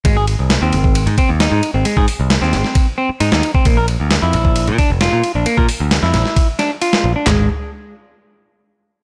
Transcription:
<<
  \new Staff \with { instrumentName = "Clean electric guitar" } { \time 4/4 \key aes \major \tempo 4 = 133 aes16 aes'16 r8. c'4 r16 c'16 r16 ees'8. c'16 | aes16 aes'16 r8. c'4 r16 c'16 r16 ees'8. c'16 | bes16 bes'16 r8. fes'4 r16 d'16 r16 f'8. d'16 | bes16 bes'16 r8. fes'4 r16 d'16 r16 f'8. d'16 |
aes8 r2. r8 | }
  \new Staff \with { instrumentName = "Picked electric bass" } { \clef bass \time 4/4 \key aes \major aes,,8. c,8 ees,16 aes,,8. aes,16 r16 ees,8 aes,16 r16 aes,,16 | r16 aes,16 r16 c,8 ees,16 aes,,16 r4 r16 aes,16 ees,16 r8 | bes,,8. d,8 f,16 bes,,8. bes,16 r16 f,,8 bes,16 r16 bes,,16 | r16 bes,16 r16 d,8 f,16 bes,,16 r4. r16 bes,,16 r16 |
aes,,8 r2. r8 | }
  \new DrumStaff \with { instrumentName = "Drums" } \drummode { \time 4/4 <bd cymr>8 cymr8 <cymr sn>8 cymr16 bd16 cymr16 cymr16 <bd cymr>8 <cymr sn>8 cymr8 | cymr16 bd16 hho8 <cymr sn>16 sn16 <cymr sn>16 sn16 <bd cymr>4 cymr16 sn16 cymr16 bd16 | <bd cymr>8 cymr8 <cymr sn>8 cymr16 bd16 cymr16 cymr16 <bd cymr>8 <cymr sn>8 cymr8 | cymr16 bd16 hho8 <cymr sn>16 sn16 <cymr sn>16 sn16 <bd cymr>8 <cymr sn>8 cymr16 sn8. |
<hc sn tomfh>4 r4 r4 r4 | }
>>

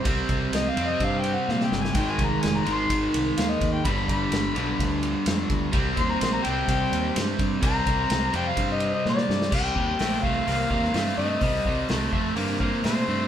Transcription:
<<
  \new Staff \with { instrumentName = "Harmonica" } { \time 4/4 \key c \minor \tempo 4 = 127 r4 \tuplet 3/2 { ees''8 f''8 ees''8 f''8 g''8 fis''8 f''8 g''8 aes''8 } | \tuplet 3/2 { g''8 aes''8 bes''8 aes''8 bes''8 c'''8~ } c'''16 r8. f''16 ees''8 g''16 | b''8 b''2 r4. | r8 c'''16 bes''16 c'''16 bes''16 g''8 g''4 r4 |
bes''4. g''16 f''8 ees''8 ees''16 d''4 | g''4. f''2 ees''8~ | ees''4. r4. c''4 | }
  \new Staff \with { instrumentName = "Overdriven electric guitar" } { \clef bass \time 4/4 \key c \minor <c g c'>4. <c g c'>2~ <c g c'>8 | <aes, ees aes>4. <aes, ees aes>2~ <aes, ees aes>8 | <g, d g>4. <g, d g>2~ <g, d g>8 | <c g c'>4. <c g c'>2~ <c g c'>8 |
<c g c'>4. <c g c'>2~ <c g c'>8 | <c g>8 <c g>8 <c a>8 <c a>8 <c bes>8 <c bes>8 <c a>8 <c a>8 | <c g>8 <c g>8 <c a>8 <c a>8 <c bes>8 <c bes>8 <c a>8 <c a>8 | }
  \new Staff \with { instrumentName = "Fingered electric bass" } { \clef bass \time 4/4 \key c \minor c,8 c,8 c,8 f,8 g,4 bes,8 g,,8 | aes,,8 c,8 f,,8 aes,,8 aes,,8 c,8 ees,8 ees,8 | g,,8 g,,8 g,,8 b,,8 d,4 f,8 d,8 | c,8 ees,8 bes,,8 c,8 c,8 ees,8 g,8 g,8 |
c,8 c,8 c,8 f,8 g,4 bes,8 g,8 | c,8 ees,8 bes,,8 c,8 c,8 ees,8 g,8 g,8 | c,8 c,8 c,8 f,8 g,4 bes,8 g,8 | }
  \new DrumStaff \with { instrumentName = "Drums" } \drummode { \time 4/4 <bd cymr>8 <bd cymr>8 <cymr sn>8 cymr8 <bd cymr>8 cymr8 sn16 sn16 sn16 sn16 | <bd cymr>8 <bd cymr>8 <cymr sn>8 cymr8 <bd cymr>8 cymr8 <cymr sn>8 <bd cymr sn>8 | <bd cymr>8 <bd cymr>8 <cymr sn>8 cymr8 <bd cymr>8 cymr8 <cymr sn>8 <bd cymr>8 | <bd cymr>8 <bd cymr>8 <cymr sn>8 cymr8 <bd cymr>8 cymr8 <cymr sn>8 <bd cymr>8 |
<bd cymr>8 <bd cymr>8 <cymr sn>8 cymr8 <bd cymr>8 cymr8 sn16 sn16 sn16 sn16 | <cymc bd>8 bd8 <hho sn>8 bd8 hho8 bd16 sn16 <hho sn>4 | <hho bd>8 bd8 <hho sn>8 bd8 hho8 bd8 <hho sn>4 | }
>>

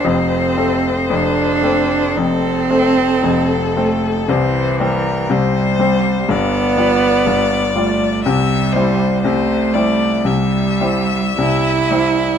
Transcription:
<<
  \new Staff \with { instrumentName = "Violin" } { \time 4/4 \key f \major \tempo 4 = 58 c''2 a'8 a'4. | c''8 bes'8 c''4 d''2 | e''8 c''8 c''8 d''8 e''2 | }
  \new Staff \with { instrumentName = "Cello" } { \time 4/4 \key f \major c'4 d'4 c'4. a8 | e4 g4 b4. a8 | g4 a4 g4 e'4 | }
  \new Staff \with { instrumentName = "Grand piano" } { \clef bass \time 4/4 \key f \major <f,, f,>8 <a c' c''>8 <f,, f,>8 <a c' c''>8 <f,, f,>8 <a c' c''>8 <f,, f,>8 <a c' c''>8 | <c, c>8 <g c' c''>8 <c, c>8 <g c' c''>8 <g,, g,>8 <g f' d''>8 <g,, g,>8 <g f' d''>8 | <c, c>8 <g e' c''>8 <c, c>8 <g e' c''>8 <c, c>8 <g e' c''>8 <c, c>8 <g e' c''>8 | }
>>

